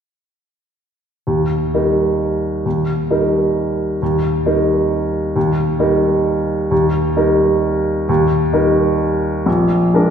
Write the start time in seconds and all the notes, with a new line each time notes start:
1.27 D#2
1.74 G3 D#4 A#4
2.65 D#2
3.10 G3 D#4 A#4
4.02 D#2
4.46 G3 D#4 A#4
5.36 D#2
5.79 G3 D#4 A#4
6.71 D#2
7.16 G3 D#4 A#4
8.09 D#2
8.53 G3 D#4 A#4
9.46 A#1
9.94 G#3 D4 A#4